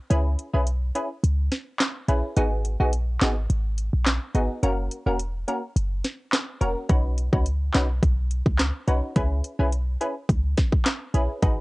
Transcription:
0.10 0.36 C#2 loud
0.10 0.50 C#4 medium
0.10 0.50 E4 medium
0.10 0.50 G#4 medium
0.10 0.50 B4 loud
0.10 closed hi-hat medium
0.39 closed hi-hat soft
0.53 0.91 B1 medium
0.53 0.65 C#4 medium
0.53 0.66 E4 medium
0.53 0.66 G#4 medium
0.53 0.66 B4 medium
0.67 closed hi-hat medium
0.95 1.09 C#4 medium
0.95 1.09 E4 medium
0.95 1.09 G#4 medium
0.95 1.09 B4 medium
0.95 closed hi-hat medium
1.23 1.49 C#2 loud
1.23 closed hi-hat medium
1.52 snare medium
1.52 closed hi-hat soft
1.80 snare loud
1.80 clap loud
1.80 closed hi-hat medium
2.08 2.22 A#1 medium
2.08 2.35 C#4 medium
2.08 2.35 E4 medium
2.08 2.35 G#4 medium
2.08 2.35 B4 medium
2.08 closed hi-hat soft
2.37 2.76 G#1 loud
2.37 2.76 B3 medium
2.37 2.76 D#4 medium
2.37 2.77 F#4 medium
2.37 2.77 G#4 loud
2.37 closed hi-hat medium
2.65 closed hi-hat medium
2.80 3.18 A#1 medium
2.80 2.92 B3 medium
2.80 2.92 D#4 medium
2.80 2.92 F#4 medium
2.80 2.92 G#4 medium
2.93 closed hi-hat medium
3.21 3.47 G#1 medium
3.21 3.35 B3 medium
3.21 3.35 D#4 medium
3.21 3.35 F#4 medium
3.21 3.36 G#4 medium
3.21 snare loud
3.21 clap medium
3.21 closed hi-hat medium
3.50 3.89 G#1 loud
3.50 closed hi-hat medium
3.78 closed hi-hat soft
3.93 4.19 A#1 medium
4.06 snare loud
4.06 clap loud
4.06 closed hi-hat medium
4.35 4.48 G#1 medium
4.35 4.61 B3 medium
4.35 4.61 D#4 medium
4.35 4.61 F#4 medium
4.35 4.61 G#4 medium
4.35 closed hi-hat soft
4.63 4.89 F#1 loud
4.63 5.03 A#3 medium
4.63 5.03 C#4 medium
4.63 5.03 F#4 medium
4.63 5.03 A#4 loud
4.63 closed hi-hat medium
4.91 closed hi-hat medium
5.06 5.44 E1 medium
5.06 5.18 A#3 medium
5.06 5.18 C#4 medium
5.06 5.19 F#4 medium
5.06 5.19 A#4 medium
5.19 closed hi-hat medium
5.48 5.62 A#3 medium
5.48 5.62 C#4 medium
5.48 5.62 F#4 medium
5.48 5.62 A#4 medium
5.48 closed hi-hat medium
5.76 6.02 F#1 loud
5.76 closed hi-hat medium
6.04 snare medium
6.04 closed hi-hat medium
6.33 snare loud
6.33 clap loud
6.33 closed hi-hat medium
6.61 6.75 E1 medium
6.61 6.87 A#3 medium
6.61 6.87 C#4 medium
6.61 6.87 F#4 medium
6.61 6.88 A#4 medium
6.61 closed hi-hat soft
6.89 7.29 B1 loud
6.89 7.29 C#4 medium
6.89 7.29 D#4 medium
6.89 7.29 F#4 medium
6.89 7.29 B4 loud
6.89 kick loud
6.89 closed hi-hat medium
7.18 closed hi-hat medium
7.33 7.70 C#2 medium
7.33 7.45 C#4 medium
7.33 7.45 D#4 medium
7.33 7.45 F#4 medium
7.33 7.45 B4 medium
7.33 kick medium
7.46 closed hi-hat medium
7.74 8.00 B1 loud
7.74 7.88 C#4 medium
7.74 7.88 D#4 medium
7.74 7.88 F#4 medium
7.74 7.88 B4 medium
7.74 snare loud
7.74 clap medium
7.74 closed hi-hat medium
8.03 8.42 B1 loud
8.03 kick medium
8.03 closed hi-hat medium
8.31 closed hi-hat medium
8.46 8.71 C#2 medium
8.46 kick medium
8.59 snare loud
8.59 clap medium
8.59 closed hi-hat medium
8.87 9.01 B1 medium
8.87 9.14 C#4 medium
8.87 9.14 D#4 medium
8.87 9.14 F#4 medium
8.87 9.14 B4 medium
8.87 closed hi-hat soft
9.16 9.41 C#2 loud
9.16 9.56 C#4 medium
9.16 9.56 E4 medium
9.16 9.56 G#4 medium
9.16 9.56 B4 loud
9.16 kick loud
9.16 closed hi-hat medium
9.44 closed hi-hat medium
9.59 9.97 B1 medium
9.59 9.71 C#4 medium
9.59 9.71 E4 medium
9.59 9.71 G#4 medium
9.59 9.72 B4 medium
9.72 closed hi-hat medium
10.01 10.14 C#4 medium
10.01 10.14 E4 medium
10.01 10.14 G#4 medium
10.01 10.15 B4 medium
10.01 closed hi-hat medium
10.29 10.55 C#2 loud
10.29 kick medium
10.29 closed hi-hat medium
10.57 kick medium
10.57 snare medium
10.57 closed hi-hat medium
10.72 kick medium
10.86 snare loud
10.86 clap medium
10.86 closed hi-hat medium
11.14 11.28 A#1 medium
11.14 11.40 C#4 medium
11.14 11.40 E4 medium
11.14 11.40 G#4 medium
11.14 11.40 B4 medium
11.14 closed hi-hat soft
11.42 11.61 G#1 loud
11.42 11.61 D#4 medium
11.42 11.61 F#4 medium
11.42 11.61 G#4 medium
11.42 11.61 B4 loud
11.42 kick loud
11.42 closed hi-hat medium

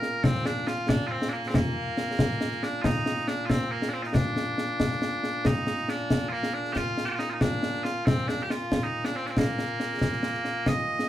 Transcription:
0.00 11.09 A#2 medium
0.00 1.33 A#3 medium
0.00 0.24 A#4 medium
0.00 snare medium
0.24 0.46 C4 loud
0.24 concert bass drum medium
0.24 snare loud
0.46 0.68 D4 loud
0.46 snare medium
0.67 0.89 F4 loud
0.67 snare medium
0.89 1.07 D4 loud
0.89 concert bass drum medium
0.89 snare loud
1.07 1.29 C4 loud
1.07 1.11 F4 loud
1.22 snare medium
1.29 1.33 D4 medium
1.33 1.48 A#3 medium
1.43 snare soft
1.48 1.55 C4 medium
1.54 2.63 A#3 loud
1.54 concert bass drum medium
1.54 snare loud
1.97 snare medium
2.19 concert bass drum medium
2.19 snare loud
2.30 snare soft
2.41 snare medium
2.52 snare soft
2.63 2.82 D4 medium
2.63 snare medium
2.82 3.28 D#4 loud
2.82 2.85 F4 loud
2.82 concert bass drum medium
2.82 snare loud
2.95 snare soft
3.06 snare medium
3.17 snare soft
3.28 3.46 D4 medium
3.28 snare medium
3.46 3.50 F4 medium
3.46 concert bass drum medium
3.46 snare loud
3.50 3.71 C4 medium
3.71 3.89 A#3 medium
3.82 snare medium
3.89 3.93 D4 medium
3.93 4.03 C4 medium
4.03 4.14 D#4 medium
4.03 4.07 F4 medium
4.03 snare soft
4.14 5.46 D4 loud
4.14 concert bass drum medium
4.14 snare loud
4.36 snare medium
4.58 snare medium
4.80 concert bass drum medium
4.80 snare loud
4.91 snare soft
5.02 snare medium
5.24 snare medium
5.45 5.90 D#4 loud
5.45 concert bass drum medium
5.45 snare loud
5.56 snare soft
5.67 snare medium
5.78 snare soft
5.88 6.29 D4 loud
5.88 snare medium
6.10 concert bass drum medium
6.10 snare loud
6.29 6.54 A#3 loud
6.29 6.32 F4 loud
6.43 snare medium
6.54 6.73 D4 medium
6.65 snare soft
6.73 7.05 F4 loud
6.73 6.77 G4 loud
6.73 concert bass drum medium
6.73 snare medium
6.97 snare medium
7.05 7.10 F4 loud
7.05 7.08 G4 loud
7.10 7.14 G4 medium
7.14 7.19 F4 loud
7.19 7.30 D#4 loud
7.19 snare medium
7.30 7.41 D#4 medium
7.30 7.33 F4 medium
7.41 7.84 D4 loud
7.41 concert bass drum medium
7.41 snare loud
7.52 snare soft
7.63 snare medium
7.74 snare soft
7.84 8.06 F4 loud
7.84 snare medium
8.06 8.28 C4 loud
8.06 concert bass drum medium
8.06 snare loud
8.18 snare soft
8.28 8.43 D4 loud
8.28 snare medium
8.40 8.50 G4 medium
8.40 snare soft
8.50 8.84 F4 loud
8.50 snare medium
8.72 concert bass drum medium
8.72 snare loud
8.84 9.05 D#4 loud
9.05 9.16 D4 medium
9.05 snare medium
9.16 9.26 C4 medium
9.26 9.30 D4 medium
9.26 snare soft
9.30 9.38 C4 medium
9.37 10.68 A#3 medium
9.37 concert bass drum medium
9.37 snare loud
9.58 snare medium
9.80 snare medium
10.01 concert bass drum medium
10.01 snare loud
10.12 snare soft
10.23 snare medium
10.34 snare soft
10.45 snare medium
10.66 11.09 D#5 loud
10.66 concert bass drum medium
10.66 snare loud
10.99 snare medium

